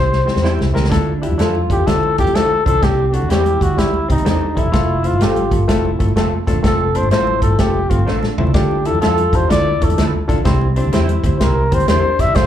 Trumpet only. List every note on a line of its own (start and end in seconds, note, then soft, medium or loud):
0.00 0.74 C5 loud
1.72 1.89 G4 loud
1.87 2.18 A4 loud
2.19 2.37 G4 loud
2.35 2.66 A4 loud
2.66 2.85 A4 loud
2.83 3.07 G4 medium
3.07 3.15 G4 medium
3.14 3.30 F#4 medium
3.31 3.64 G4 medium
3.62 3.80 F#4 loud
3.79 4.09 E4 medium
4.11 4.25 D#4 medium
4.29 4.60 D#4 medium
4.59 5.08 E4 loud
5.06 5.24 F4 loud
5.23 5.53 G4 medium
6.66 6.98 A4 loud
6.96 7.11 C5 medium
7.12 7.41 C5 loud
7.43 7.61 A4 medium
7.60 7.91 G4 loud
7.90 8.17 F4 medium
8.54 8.88 G4 medium
8.86 9.01 A4 medium
9.01 9.37 A4 loud
9.35 9.51 C5 loud
9.52 9.86 D5 loud
9.84 10.09 A4 medium
11.38 11.45 C5 medium
11.43 11.76 A#4 medium
11.74 11.89 C5 medium
11.89 12.22 C5 loud
12.21 12.37 E5 loud
12.36 12.47 C5 loud